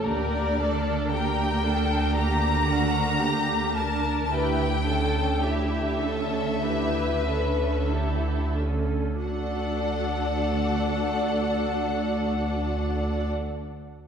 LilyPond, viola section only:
\new Staff \with { instrumentName = "Viola section" } { \time 4/4 \key d \major \tempo 4 = 50 <bes g'>8 <d' bes'>8 <bes g'>8 <d' bes'>8 <bes g'>8 <d' bes'>8 <bes g'>8 <d' bes'>8 | <e' g'>8 <cis' a'>8 <e' g'>8 <cis' a'>8 <e' g'>8 <cis' a'>8 <e' g'>8 <cis' a'>8 | <d' fis'>1 | }